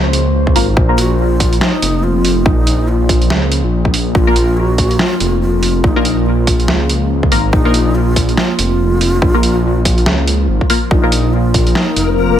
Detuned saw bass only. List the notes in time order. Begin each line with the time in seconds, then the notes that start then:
Already playing: C#2
0.56 G#1
0.77 A#1
1.82 F1
2.46 A#1
3.30 C#2
3.64 A#1
4.15 A#1
5.21 F1
5.84 A#1
6.68 C#2
7.32 G#1
7.53 A#1
8.59 F1
9.22 A#1
10.06 C#2
10.49 G#1
10.91 A#1
11.96 F1